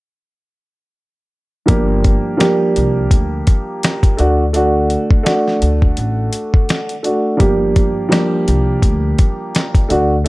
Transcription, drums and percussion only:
0, 0, Header, 1, 2, 480
1, 0, Start_track
1, 0, Key_signature, -2, "minor"
1, 0, Tempo, 714286
1, 1134, Time_signature, 4, 2, 24, 8
1, 6908, End_track
2, 0, Start_track
2, 0, Title_t, "Drums"
2, 1131, Note_on_c, 9, 42, 81
2, 1133, Note_on_c, 9, 36, 102
2, 1198, Note_off_c, 9, 42, 0
2, 1200, Note_off_c, 9, 36, 0
2, 1373, Note_on_c, 9, 42, 63
2, 1375, Note_on_c, 9, 36, 97
2, 1441, Note_off_c, 9, 42, 0
2, 1442, Note_off_c, 9, 36, 0
2, 1615, Note_on_c, 9, 42, 80
2, 1618, Note_on_c, 9, 38, 104
2, 1619, Note_on_c, 9, 40, 86
2, 1682, Note_off_c, 9, 42, 0
2, 1685, Note_off_c, 9, 38, 0
2, 1686, Note_off_c, 9, 40, 0
2, 1856, Note_on_c, 9, 42, 81
2, 1923, Note_off_c, 9, 42, 0
2, 2089, Note_on_c, 9, 36, 92
2, 2091, Note_on_c, 9, 42, 91
2, 2157, Note_off_c, 9, 36, 0
2, 2159, Note_off_c, 9, 42, 0
2, 2331, Note_on_c, 9, 42, 96
2, 2335, Note_on_c, 9, 36, 92
2, 2398, Note_off_c, 9, 42, 0
2, 2402, Note_off_c, 9, 36, 0
2, 2576, Note_on_c, 9, 42, 92
2, 2584, Note_on_c, 9, 38, 108
2, 2585, Note_on_c, 9, 40, 89
2, 2643, Note_off_c, 9, 42, 0
2, 2651, Note_off_c, 9, 38, 0
2, 2652, Note_off_c, 9, 40, 0
2, 2708, Note_on_c, 9, 36, 96
2, 2711, Note_on_c, 9, 42, 60
2, 2776, Note_off_c, 9, 36, 0
2, 2779, Note_off_c, 9, 42, 0
2, 2813, Note_on_c, 9, 42, 70
2, 2880, Note_off_c, 9, 42, 0
2, 3051, Note_on_c, 9, 42, 79
2, 3119, Note_off_c, 9, 42, 0
2, 3293, Note_on_c, 9, 42, 61
2, 3360, Note_off_c, 9, 42, 0
2, 3431, Note_on_c, 9, 36, 93
2, 3498, Note_off_c, 9, 36, 0
2, 3536, Note_on_c, 9, 42, 80
2, 3538, Note_on_c, 9, 38, 103
2, 3539, Note_on_c, 9, 40, 81
2, 3603, Note_off_c, 9, 42, 0
2, 3605, Note_off_c, 9, 38, 0
2, 3607, Note_off_c, 9, 40, 0
2, 3680, Note_on_c, 9, 38, 37
2, 3747, Note_off_c, 9, 38, 0
2, 3776, Note_on_c, 9, 42, 81
2, 3843, Note_off_c, 9, 42, 0
2, 3912, Note_on_c, 9, 36, 87
2, 3979, Note_off_c, 9, 36, 0
2, 4011, Note_on_c, 9, 42, 94
2, 4078, Note_off_c, 9, 42, 0
2, 4251, Note_on_c, 9, 42, 93
2, 4318, Note_off_c, 9, 42, 0
2, 4393, Note_on_c, 9, 36, 86
2, 4460, Note_off_c, 9, 36, 0
2, 4496, Note_on_c, 9, 42, 94
2, 4504, Note_on_c, 9, 38, 110
2, 4505, Note_on_c, 9, 40, 86
2, 4563, Note_off_c, 9, 42, 0
2, 4571, Note_off_c, 9, 38, 0
2, 4572, Note_off_c, 9, 40, 0
2, 4632, Note_on_c, 9, 42, 61
2, 4699, Note_off_c, 9, 42, 0
2, 4733, Note_on_c, 9, 42, 72
2, 4800, Note_off_c, 9, 42, 0
2, 4973, Note_on_c, 9, 42, 83
2, 4974, Note_on_c, 9, 36, 101
2, 5040, Note_off_c, 9, 42, 0
2, 5041, Note_off_c, 9, 36, 0
2, 5214, Note_on_c, 9, 42, 65
2, 5216, Note_on_c, 9, 36, 98
2, 5282, Note_off_c, 9, 42, 0
2, 5283, Note_off_c, 9, 36, 0
2, 5456, Note_on_c, 9, 42, 80
2, 5459, Note_on_c, 9, 38, 103
2, 5460, Note_on_c, 9, 40, 85
2, 5524, Note_off_c, 9, 42, 0
2, 5526, Note_off_c, 9, 38, 0
2, 5527, Note_off_c, 9, 40, 0
2, 5697, Note_on_c, 9, 42, 82
2, 5764, Note_off_c, 9, 42, 0
2, 5930, Note_on_c, 9, 36, 92
2, 5932, Note_on_c, 9, 42, 90
2, 5997, Note_off_c, 9, 36, 0
2, 6000, Note_off_c, 9, 42, 0
2, 6173, Note_on_c, 9, 42, 95
2, 6175, Note_on_c, 9, 36, 96
2, 6240, Note_off_c, 9, 42, 0
2, 6242, Note_off_c, 9, 36, 0
2, 6416, Note_on_c, 9, 42, 93
2, 6424, Note_on_c, 9, 38, 108
2, 6425, Note_on_c, 9, 40, 84
2, 6483, Note_off_c, 9, 42, 0
2, 6491, Note_off_c, 9, 38, 0
2, 6493, Note_off_c, 9, 40, 0
2, 6549, Note_on_c, 9, 36, 98
2, 6552, Note_on_c, 9, 42, 59
2, 6616, Note_off_c, 9, 36, 0
2, 6619, Note_off_c, 9, 42, 0
2, 6654, Note_on_c, 9, 42, 71
2, 6721, Note_off_c, 9, 42, 0
2, 6908, End_track
0, 0, End_of_file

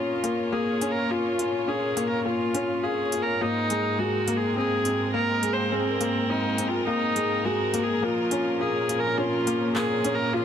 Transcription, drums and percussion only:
0, 0, Header, 1, 2, 480
1, 0, Start_track
1, 0, Key_signature, -5, "minor"
1, 0, Tempo, 576923
1, 917, Time_signature, 4, 2, 24, 8
1, 8694, End_track
2, 0, Start_track
2, 0, Title_t, "Drums"
2, 198, Note_on_c, 9, 42, 50
2, 281, Note_off_c, 9, 42, 0
2, 677, Note_on_c, 9, 42, 53
2, 761, Note_off_c, 9, 42, 0
2, 1158, Note_on_c, 9, 42, 55
2, 1241, Note_off_c, 9, 42, 0
2, 1638, Note_on_c, 9, 42, 59
2, 1721, Note_off_c, 9, 42, 0
2, 2118, Note_on_c, 9, 42, 56
2, 2201, Note_off_c, 9, 42, 0
2, 2598, Note_on_c, 9, 42, 58
2, 2681, Note_off_c, 9, 42, 0
2, 3079, Note_on_c, 9, 42, 58
2, 3163, Note_off_c, 9, 42, 0
2, 3558, Note_on_c, 9, 42, 64
2, 3641, Note_off_c, 9, 42, 0
2, 4036, Note_on_c, 9, 42, 59
2, 4120, Note_off_c, 9, 42, 0
2, 4517, Note_on_c, 9, 42, 56
2, 4600, Note_off_c, 9, 42, 0
2, 4997, Note_on_c, 9, 42, 58
2, 5081, Note_off_c, 9, 42, 0
2, 5477, Note_on_c, 9, 42, 60
2, 5561, Note_off_c, 9, 42, 0
2, 5957, Note_on_c, 9, 42, 59
2, 6040, Note_off_c, 9, 42, 0
2, 6437, Note_on_c, 9, 42, 61
2, 6520, Note_off_c, 9, 42, 0
2, 6916, Note_on_c, 9, 42, 57
2, 6999, Note_off_c, 9, 42, 0
2, 7399, Note_on_c, 9, 42, 62
2, 7482, Note_off_c, 9, 42, 0
2, 7880, Note_on_c, 9, 42, 56
2, 7963, Note_off_c, 9, 42, 0
2, 8118, Note_on_c, 9, 39, 64
2, 8201, Note_off_c, 9, 39, 0
2, 8357, Note_on_c, 9, 42, 57
2, 8440, Note_off_c, 9, 42, 0
2, 8694, End_track
0, 0, End_of_file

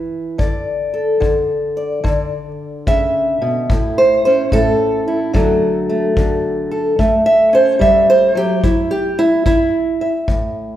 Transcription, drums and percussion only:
0, 0, Header, 1, 2, 480
1, 0, Start_track
1, 0, Tempo, 824176
1, 228, Time_signature, 4, 2, 24, 8
1, 6270, End_track
2, 0, Start_track
2, 0, Title_t, "Drums"
2, 228, Note_on_c, 9, 36, 69
2, 287, Note_off_c, 9, 36, 0
2, 710, Note_on_c, 9, 36, 56
2, 768, Note_off_c, 9, 36, 0
2, 1191, Note_on_c, 9, 36, 67
2, 1250, Note_off_c, 9, 36, 0
2, 1672, Note_on_c, 9, 36, 70
2, 1730, Note_off_c, 9, 36, 0
2, 2153, Note_on_c, 9, 36, 76
2, 2211, Note_off_c, 9, 36, 0
2, 2632, Note_on_c, 9, 36, 65
2, 2691, Note_off_c, 9, 36, 0
2, 3113, Note_on_c, 9, 36, 75
2, 3171, Note_off_c, 9, 36, 0
2, 3592, Note_on_c, 9, 36, 74
2, 3650, Note_off_c, 9, 36, 0
2, 4071, Note_on_c, 9, 36, 64
2, 4129, Note_off_c, 9, 36, 0
2, 4550, Note_on_c, 9, 36, 60
2, 4609, Note_off_c, 9, 36, 0
2, 5029, Note_on_c, 9, 36, 72
2, 5088, Note_off_c, 9, 36, 0
2, 5508, Note_on_c, 9, 36, 74
2, 5566, Note_off_c, 9, 36, 0
2, 5987, Note_on_c, 9, 36, 65
2, 6045, Note_off_c, 9, 36, 0
2, 6270, End_track
0, 0, End_of_file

